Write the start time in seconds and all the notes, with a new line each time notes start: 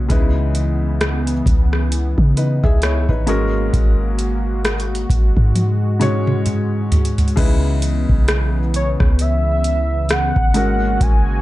Already playing: G#2 C#3 G#3 C#4 F#4 C#5
0.09 C#2 C#3 E3 G#3 B3 D#4 E4 B4, kick, closed hi-hat
0.55 closed hi-hat
1.01 cross-stick, closed hi-hat
1.27 closed hi-hat
1.46 C#2, kick, closed hi-hat
1.73 cross-stick
1.92 closed hi-hat
2.18 C#3, kick
2.37 D#4 B4, closed hi-hat
2.64 C#2 G#4 E5, kick
2.82 E4 C#5, cross-stick, closed hi-hat
3.09 G#1 D#4 B4, kick
3.27 G#2 G#3 A#3 C#4 F#4 A#4, closed hi-hat
3.73 G#1, kick, closed hi-hat
4.19 closed hi-hat
4.65 cross-stick, closed hi-hat
4.80 closed hi-hat
4.95 closed hi-hat
5.10 G#1 G#3, kick, closed hi-hat
5.37 G#2, kick
5.55 closed hi-hat, high tom
6.00 G#2 G#3 C#4 F#4 C#5, closed hi-hat, mid tom
6.27 mid tom
6.46 closed hi-hat, mid tom
6.92 closed hi-hat, floor tom
7.05 closed hi-hat
7.18 closed hi-hat, floor tom
7.28 closed hi-hat
7.36 C#2 C#3 E3 G#3 B3 D#4 E4 B4, kick, closed hi-hat, crash
7.82 closed hi-hat
8.09 B1, kick
8.28 cross-stick, closed hi-hat
8.74 C#5, closed hi-hat
9.00 C#2, kick, cross-stick
9.19 E5, closed hi-hat
9.64 closed hi-hat
10.09 F#5, cross-stick, closed hi-hat
10.36 G#1, kick
10.54 G#2 G#3 A#3 C#4 F#4 A#4, closed hi-hat
11.01 G#1 G#5, kick, closed hi-hat